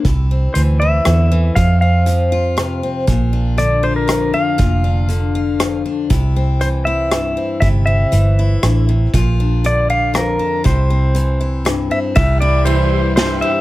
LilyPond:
<<
  \new Staff \with { instrumentName = "Pedal steel guitar" } { \time 3/4 \key c \mixolydian \tempo 4 = 119 r4 c''8 e''4. | f''8 f''2 r8 | r4 d''8 c''16 bes'8. f''8~ | f''2~ f''8 r8 |
r4 c''8 e''4. | e''8 e''2 r8 | r4 d''8 f''8 bes'4 | c''2 r8 e''8 |
e''8 d''8 c''4 c''8 e''8 | }
  \new Staff \with { instrumentName = "Tonewheel organ" } { \time 3/4 \key c \mixolydian r2. | r2. | r2. | r2. |
r2. | r2. | r2. | r2. |
r4 <e' g' c''>8 r8 <e' g' c''>8 r8 | }
  \new Staff \with { instrumentName = "Steel-string acoustic guitar" } { \time 3/4 \key c \mixolydian << { e'8 c'4 e'4. | f'8 c'4 f'4 c'8 | f'8 d'4 f'4 d'8 | f'8 d'4 f'4 d'8 |
e'8 c'4 e'4 c'8 | e'8 c'4 e'4. | f'8 d'4 f'4 d'8 | e'8 c'4 e'4 c'8 |
r8 e'8 g4 c'8 g8 | } \\ { c4 e4 d8 e8 | f,4 f4 c4 | bes,4 d4 f,4 | bes,4 d4 f,4 |
c4 e4 g,4 | c4 e4 d8 c8 | bes,4 d4 f,4 | c4 e4 g,4 |
c4 e4 g,4 | } >> }
  \new Staff \with { instrumentName = "String section" } { \clef bass \time 3/4 \key c \mixolydian r2. | r2. | r2. | r2. |
r2. | r2. | r2. | r2. |
<c e g e'>2. | }
  \new Staff \with { instrumentName = "Fingered electric bass" } { \clef bass \time 3/4 \key c \mixolydian c,4 d,4 e,4 | f,2. | bes,,2. | f,,2. |
c,2. | g,,4 g,,4 a,,4 | bes,,2. | c,2. |
c,2. | }
  \new DrumStaff \with { instrumentName = "Drums" } \drummode { \time 3/4 <hh bd>4 hh4 <hh ss>4 | <hh bd>4 hh4 <hh ss>4 | <hh bd>4 hh4 <hh ss>4 | <hh bd>4 hh4 <hh ss>4 |
<hh bd>4 hh4 <hh ss>4 | <hh bd>4 hh4 <hh ss>4 | <hh bd>4 hh4 <hh ss>4 | <hh bd>4 hh4 <hh ss>4 |
<bd cymr>4 cymr4 <cymr sn>4 | }
>>